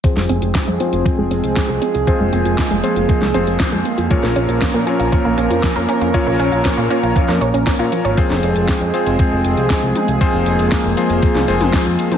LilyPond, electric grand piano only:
\new Staff \with { instrumentName = "Electric grand piano" } { \time 4/4 \key f \minor \tempo 4 = 118 <f c' f' aes' c''>4. <f c' f' aes' c''>2~ <f c' f' aes' c''>8 | <f c' f' aes' c''>4. <f c' f' aes' c''>4 <f c' f' aes' c''>4. | <bes, des' f' bes' des''>4. <bes, des' f' bes' des''>2~ <bes, des' f' bes' des''>8 | <bes, des' f' bes' des''>4. <bes, des' f' bes' des''>4 r8. <bes, des' f' bes' des''>8. |
<f c' f' aes' c''>4. <f c' f' aes' c''>2~ <f c' f' aes' c''>8 | <f c' f' aes' c''>4. <f c' f' aes' c''>4 <f c' f' aes' c''>4. | }